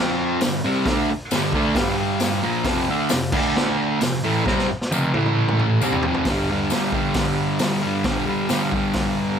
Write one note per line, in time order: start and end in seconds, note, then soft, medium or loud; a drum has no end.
0.00 0.41 F3 medium
0.00 0.41 C4 loud
0.00 0.41 F4 loud
0.41 0.59 G2 medium
0.41 0.60 D3 medium
0.41 snare loud
0.41 open hi-hat medium
0.41 tambourine medium
0.65 0.86 C3 medium
0.65 0.87 G3 loud
0.65 0.87 C4 loud
0.86 1.08 D3 medium
0.86 1.09 A3 loud
0.86 1.09 D4 loud
0.86 kick loud
0.86 snare loud
0.86 open hi-hat medium
1.10 muted distorted electric guitar stroke medium
1.31 1.54 G2 medium
1.31 1.53 D3 loud
1.31 1.54 G3 loud
1.31 snare loud
1.31 open hi-hat medium
1.31 tambourine medium
1.53 1.75 D3 loud
1.53 1.76 A3 loud
1.53 1.76 D4 loud
1.53 kick loud
1.75 2.43 G2 loud
1.75 2.43 D3 medium
1.75 2.43 G3 loud
1.75 kick loud
1.75 snare loud
1.75 open hi-hat medium
2.20 snare loud
2.20 open hi-hat medium
2.20 tambourine loud
2.43 2.65 A#2 loud
2.43 2.65 F3 loud
2.43 2.66 A#3 loud
2.64 2.88 F2 medium
2.64 2.88 C3 loud
2.64 2.88 F3 loud
2.64 kick loud
2.64 snare loud
2.64 open hi-hat medium
2.90 3.11 D3 loud
2.90 3.11 A3 loud
2.90 3.11 D4 loud
3.09 3.29 F2 medium
3.09 3.29 C3 medium
3.09 snare loud
3.09 open hi-hat medium
3.09 tambourine loud
3.32 4.00 D3 medium
3.32 4.00 A3 loud
3.32 4.01 D4 loud
3.32 kick loud
3.32 crash loud
3.56 snare loud
4.01 4.19 F2 medium
4.01 4.19 C3 medium
4.01 snare loud
4.01 open hi-hat medium
4.01 tambourine medium
4.24 4.45 A2 medium
4.24 4.46 E3 medium
4.24 4.46 A3 loud
4.45 4.67 C3 medium
4.45 4.68 G3 loud
4.45 4.68 C4 loud
4.45 kick loud
4.45 snare medium
4.59 snare medium
4.71 muted distorted electric guitar stroke medium
4.82 snare medium
4.91 5.13 F2 medium
4.91 5.13 C3 medium
4.91 5.13 F3 medium
4.91 high tom medium
4.91 tambourine loud
5.14 5.80 A2 loud
5.14 5.81 E3 loud
5.14 5.81 A3 medium
5.14 high tom medium
5.26 mid tom medium
5.48 mid tom medium
5.59 mid tom medium
5.82 6.03 C3 loud
5.82 6.03 G3 medium
5.82 6.04 C4 loud
5.82 mid tom loud
5.82 tambourine loud
5.92 floor tom medium
6.03 6.26 F2 loud
6.03 6.27 C3 medium
6.03 floor tom loud
6.07 6.27 F3 loud
6.14 floor tom medium
6.25 6.71 G2 loud
6.25 kick loud
6.25 snare loud
6.25 open hi-hat medium
6.30 6.52 D3 medium
6.30 6.50 G3 loud
6.51 6.73 D3 medium
6.51 6.74 G3 medium
6.70 7.60 G2 medium
6.70 6.96 D3 medium
6.70 snare loud
6.70 open hi-hat medium
6.70 tambourine loud
6.75 6.93 G3 medium
6.92 7.63 G3 medium
6.92 kick medium
6.97 7.62 D3 medium
7.14 kick loud
7.14 snare loud
7.14 open hi-hat medium
7.59 8.05 G2 medium
7.59 7.85 D3 medium
7.59 snare loud
7.59 open hi-hat medium
7.59 tambourine medium
7.64 7.82 G3 medium
7.82 8.05 D3 medium
7.82 8.07 G3 medium
8.04 8.49 G2 medium
8.04 8.28 D3 medium
8.04 8.26 G3 medium
8.04 kick loud
8.04 snare loud
8.04 open hi-hat medium
8.26 8.49 D3 medium
8.26 8.52 G3 medium
8.49 9.39 G2 medium
8.49 8.74 D3 medium
8.49 8.72 G3 medium
8.49 snare loud
8.49 open hi-hat medium
8.49 tambourine loud
8.72 9.39 D3 medium
8.72 9.39 G3 medium
8.72 kick medium
8.93 kick loud
8.93 snare loud
8.93 open hi-hat medium